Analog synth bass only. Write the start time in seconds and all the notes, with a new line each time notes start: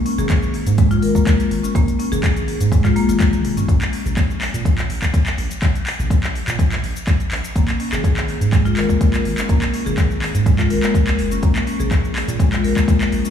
0.18 G#1
0.67 G#2
1.02 G#1
1.51 G#1
1.75 G#1
2.12 G#1
2.60 G#2
3.08 G#1
3.68 A#1
4.05 A#1
4.54 A#2
4.89 A#1
5.38 A#1
5.62 A#1
5.99 A#1
6.48 A#2
6.83 A#1
7.31 A#1
7.56 G#1
7.92 G#1
8.41 G#2
8.77 G#1
9.25 G#1
9.49 G#1
9.86 G#1
10.34 G#2
10.70 G#1
11.07 C#2
11.19 F#1
11.43 A#1
11.80 A#1
12.28 A#2
12.63 A#1
13.12 A#1